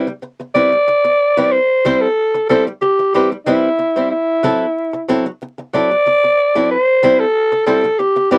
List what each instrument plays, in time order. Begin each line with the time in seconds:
Already playing: hollow-body jazz guitar G3
0.07 muted hollow-body jazz guitar stroke
0.22 muted hollow-body jazz guitar stroke
0.40 muted hollow-body jazz guitar stroke
0.54 hollow-body jazz guitar G3 C4 E4 B4, alto saxophone D5
0.72 muted hollow-body jazz guitar stroke
0.88 muted hollow-body jazz guitar stroke
1.04 muted hollow-body jazz guitar stroke
1.37 hollow-body jazz guitar G3 C4 E4 B4
1.52 alto saxophone C5
1.85 hollow-body jazz guitar G3 C4 E4 C5
2.01 alto saxophone A4
2.34 muted hollow-body jazz guitar stroke
2.49 hollow-body jazz guitar G3 C4 E4 C5, alto saxophone A4
2.67 muted hollow-body jazz guitar stroke
2.81 alto saxophone G4, muted hollow-body jazz guitar stroke
2.99 muted hollow-body jazz guitar stroke
3.14 hollow-body jazz guitar G3 C4 E4 B4, alto saxophone G4
3.32 muted hollow-body jazz guitar stroke
3.46 hollow-body jazz guitar G3 C4 E4 B4, alto saxophone E4
3.79 muted hollow-body jazz guitar stroke
3.96 hollow-body jazz guitar G3 C4 E4 C5
4.11 alto saxophone E4
4.43 hollow-body jazz guitar F#3 C4 E4 A4
4.93 muted hollow-body jazz guitar stroke
5.08 hollow-body jazz guitar F#3 C4 E4 A4
5.26 muted hollow-body jazz guitar stroke
5.42 muted hollow-body jazz guitar stroke
5.58 muted hollow-body jazz guitar stroke
5.73 hollow-body jazz guitar F#3 C4 E4 A4, alto saxophone D5
5.91 muted hollow-body jazz guitar stroke
6.06 muted hollow-body jazz guitar stroke
6.24 muted hollow-body jazz guitar stroke
6.55 hollow-body jazz guitar F#3 C4 E4 A4
6.71 alto saxophone C5
7.03 hollow-body jazz guitar G3 C4 E4 C5
7.20 alto saxophone A4
7.52 muted hollow-body jazz guitar stroke
7.66 hollow-body jazz guitar G3 C4 E4 C5, alto saxophone A4
7.84 muted hollow-body jazz guitar stroke
7.99 alto saxophone G4, muted hollow-body jazz guitar stroke
8.16 muted hollow-body jazz guitar stroke
8.31 hollow-body jazz guitar G3 C4 E4 B4, alto saxophone G4